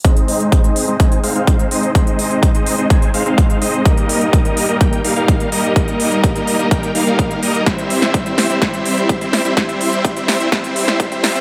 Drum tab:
HH |xxoxxxoxxxoxxxox|xxoxxxoxxxoxxxox|xxoxxxoxxxoxxxox|xxoxxxoxxxoxxxox|
SD |----------------|----------------|----------------|----------------|
BD |o---o---o---o---|o---o---o---o---|o---o---o---o---|o---o---o---o---|

HH |xxoxxxoxxxoxxxox|xxoxxxoxxxoxxxox|
SD |o--o--o-o-----o-|o-----o-o--o--o-|
BD |o---o---o---o---|o---o---o---o---|